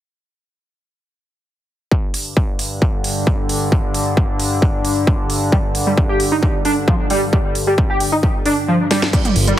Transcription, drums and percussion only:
1.92 kick loud
2.14 open hi-hat loud
2.37 kick loud
2.59 open hi-hat loud
2.82 kick loud
3.04 open hi-hat loud
3.27 kick loud
3.49 open hi-hat loud
3.72 kick loud
3.94 open hi-hat loud
4.17 kick loud
4.40 open hi-hat loud
4.62 kick loud
4.85 open hi-hat loud
5.07 kick loud
5.30 open hi-hat loud
5.52 kick loud
5.75 open hi-hat loud
5.97 kick loud
6.20 open hi-hat loud
6.43 kick loud
6.65 open hi-hat loud
6.88 kick loud
7.10 open hi-hat loud
7.33 kick loud
7.55 open hi-hat loud
7.78 kick loud
8.00 open hi-hat loud
8.23 kick loud
8.46 open hi-hat loud
8.91 snare medium
8.91 open hi-hat loud
9.02 snare medium
9.13 kick loud
9.13 closed hi-hat medium
9.13 crash medium
9.25 closed hi-hat medium
9.25 mid tom medium
9.36 open hi-hat loud
9.47 closed hi-hat medium

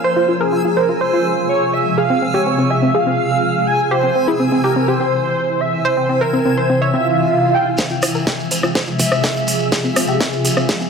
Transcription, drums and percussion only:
7.77 kick loud
7.77 snare soft
7.77 shekere soft
7.90 shekere soft
8.02 cross-stick medium
8.02 open hi-hat medium
8.02 shekere medium
8.15 shekere soft
8.27 kick loud
8.27 snare soft
8.27 shekere soft
8.39 shekere soft
8.51 open hi-hat loud
8.51 shekere medium
8.63 cross-stick medium
8.63 shekere soft
8.75 kick loud
8.75 snare soft
8.75 shekere soft
8.87 shekere soft
8.99 kick medium
8.99 open hi-hat loud
8.99 shekere medium
9.12 cross-stick medium
9.12 shekere soft
9.23 kick loud
9.23 snare medium
9.23 shekere soft
9.36 shekere soft
9.47 open hi-hat loud
9.47 shekere medium
9.59 shekere soft
9.72 kick loud
9.72 snare medium
9.72 shekere medium
9.84 shekere soft
9.96 cross-stick medium
9.96 open hi-hat loud
9.96 shekere medium
10.07 shekere soft
10.21 kick loud
10.21 snare medium
10.21 shekere soft
10.33 shekere soft
10.45 open hi-hat loud
10.45 shekere medium
10.57 cross-stick medium
10.57 shekere soft
10.69 kick loud
10.69 snare soft
10.69 shekere medium
10.81 shekere soft

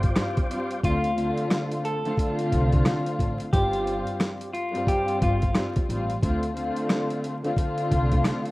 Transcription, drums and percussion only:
0.03 kick medium
0.03 closed hi-hat medium
0.16 cross-stick loud
0.16 snare loud
0.16 closed hi-hat medium
0.37 kick medium
0.37 closed hi-hat medium
0.51 closed hi-hat medium
0.71 closed hi-hat medium
0.83 kick loud
0.83 closed hi-hat loud
1.04 closed hi-hat medium
1.18 closed hi-hat medium
1.38 closed hi-hat medium
1.50 cross-stick loud
1.50 snare loud
1.50 closed hi-hat medium
1.72 closed hi-hat medium
1.85 closed hi-hat medium
2.05 closed hi-hat medium
2.17 kick medium
2.17 closed hi-hat loud
2.39 closed hi-hat medium
2.52 kick medium
2.52 closed hi-hat medium
2.72 kick medium
2.72 closed hi-hat medium
2.85 cross-stick loud
2.85 snare loud
2.85 closed hi-hat medium
3.06 closed hi-hat medium
3.19 kick medium
3.19 closed hi-hat medium
3.40 closed hi-hat medium
3.53 kick loud
3.53 closed hi-hat loud
3.73 closed hi-hat medium
3.87 closed hi-hat medium
4.07 closed hi-hat medium
4.20 cross-stick loud
4.20 snare loud
4.20 closed hi-hat medium
4.41 closed hi-hat medium
4.55 closed hi-hat medium
4.75 closed hi-hat medium
4.87 kick medium
4.87 closed hi-hat loud
5.08 closed hi-hat medium
5.22 kick medium
5.22 closed hi-hat medium
5.42 kick medium
5.42 closed hi-hat medium
5.55 cross-stick loud
5.55 snare loud
5.55 closed hi-hat medium
5.76 kick medium
5.76 closed hi-hat medium
5.90 closed hi-hat medium
6.10 closed hi-hat medium
6.23 kick loud
6.23 closed hi-hat loud
6.43 closed hi-hat medium
6.57 closed hi-hat medium
6.76 closed hi-hat medium
6.89 cross-stick loud
6.89 snare loud
6.89 closed hi-hat medium
7.10 closed hi-hat medium
7.24 closed hi-hat medium
7.45 closed hi-hat soft
7.57 kick medium
7.57 closed hi-hat loud
7.78 closed hi-hat medium
7.91 kick medium
7.91 closed hi-hat medium
8.12 kick medium
8.12 closed hi-hat medium
8.24 cross-stick loud
8.24 snare loud
8.24 closed hi-hat medium
8.45 closed hi-hat medium

